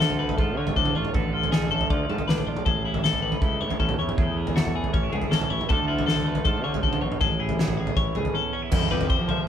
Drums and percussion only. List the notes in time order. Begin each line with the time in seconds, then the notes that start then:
0.01 snare
0.10 floor tom
0.29 floor tom
0.38 kick
0.67 floor tom
0.76 kick
0.85 floor tom, mid tom
1.05 mid tom
1.14 kick, floor tom
1.43 floor tom
1.52 snare
1.62 floor tom, mid tom
1.81 floor tom
1.90 kick
2.10 mid tom
2.18 floor tom
2.29 snare
2.38 floor tom, mid tom
2.56 mid tom
2.66 kick, floor tom
2.94 floor tom
3.04 snare
3.13 floor tom
3.32 floor tom
3.42 kick
3.70 floor tom
3.80 kick
3.89 floor tom, mid tom
4.09 mid tom
4.18 kick, floor tom
4.47 floor tom
4.57 snare
4.65 floor tom, mid tom
4.84 floor tom
4.94 kick
5.13 mid tom
5.22 floor tom
5.32 snare
5.42 floor tom, mid tom
5.61 mid tom
5.70 kick, floor tom
5.99 floor tom
6.09 snare
6.16 floor tom
6.35 floor tom
6.45 kick
6.74 floor tom
6.83 kick
6.93 floor tom, mid tom
7.12 mid tom
7.21 kick, floor tom
7.49 floor tom
7.59 snare
7.68 floor tom, mid tom
7.87 floor tom
7.97 kick
8.15 mid tom
8.25 floor tom
8.72 kick, floor tom, crash
8.81 floor tom
8.91 floor tom
9.01 floor tom
9.10 kick
9.29 floor tom, mid tom